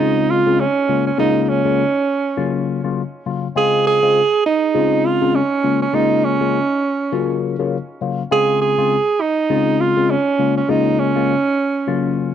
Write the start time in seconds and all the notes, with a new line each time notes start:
Already playing: D#4
0.00 C#3 G#3 C4 F4
0.30 F4
0.46 C#3 G#3 C4 F4
0.60 C#4
0.88 C#3 G#3 A#3 F4
1.07 C#4
1.18 C#3 G#3 A#3 D#4 F4
1.43 D#4
1.49 C#4
1.65 C#3 G#3 A#3 F4
2.37 C#3 F#3 A#3 F4
2.84 C#3 F#3 A#3 F4
3.26 C#3 F#3 A#3 F4
3.56 C#3 G#3 C4 F4 G#4
3.87 G#4
4.03 C#3 G#3 C4 F4
4.46 D#4
4.74 C#3 G#3 C4 F4
5.06 F4
5.21 C#3 G#3 C4 F4
5.35 C#4
5.63 C#3 G#3 A#3 F4
5.82 C#4
5.93 C#3 G#3 A#3 D#4 F4
6.24 C#4
6.40 C#3 G#3 A#3 F4
7.12 C#3 F#3 A#3 F4
7.59 C#3 F#3 A#3 F4
8.01 C#3 F#3 A#3 F4
8.31 C#3 G#3 C4 F4 G#4
8.62 G#4
8.78 C#3 G#3 C4 F4
9.21 D#4
9.50 C#3 G#3 C4 F4
9.81 F4
9.97 C#3 G#3 C4 F4
10.10 C#4
10.39 C#3 G#3 A#3 F4
10.57 C#4
10.68 C#3 G#3 A#3 D#4 F4
11.00 C#4
11.15 C#3 G#3 A#3 F4
11.87 C#3 F#3 A#3 F4